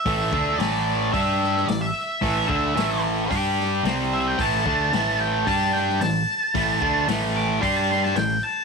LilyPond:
<<
  \new Staff \with { instrumentName = "Lead electric guitar" } { \time 4/4 \key a \minor \tempo 4 = 111 e''4 d''4 e''4 d''16 e''8.~ | e''8 e''4 r2 e''16 g''16 | a''4. g''8 a''8 g''8 a''4~ | a''4 r8 d'''8 c'''16 a''16 c'''16 a''16 g''8 a''8 | }
  \new Staff \with { instrumentName = "Distorted electric guitar" } { \clef bass \time 4/4 \key a \minor <a, e a>8 <d a d'>8 <a, e a>4 <g d' g'>4 <a, e>8 r8 | <a, e a>8 <d a d'>8 <a, e a>4 <g d' g'>4 <c g c'>4 | <a, e a>8 <d a d'>8 <a, e a>4 <g d' g'>4 <a, e>8 r8 | <a, e a>8 <d a d'>8 <a, e a>4 <g d' g'>4 <a, e>8 r8 | }
  \new Staff \with { instrumentName = "Fingered electric bass" } { \clef bass \time 4/4 \key a \minor a,,8 d,8 a,,4 g,4 a,,8 r8 | a,,8 d,8 a,,4 g,4 c,4 | a,,8 d,8 a,,4 g,4 a,,8 r8 | a,,8 d,8 a,,4 g,4 a,,8 r8 | }
  \new DrumStaff \with { instrumentName = "Drums" } \drummode { \time 4/4 <hho bd>8 bd8 <hho sn>4 <hho bd>8 sn16 sn16 <hho sn>4 | <hho bd>8 bd8 <hho sn>4 <hho bd>8 sn8 <hho sn>4 | <hho bd>8 bd8 <hho sn>4 <hho bd>8 sn16 sn16 <hho sn>4 | <hho bd>8 bd8 <hho sn>4 <hho bd>8 sn16 sn16 <hho sn>4 | }
>>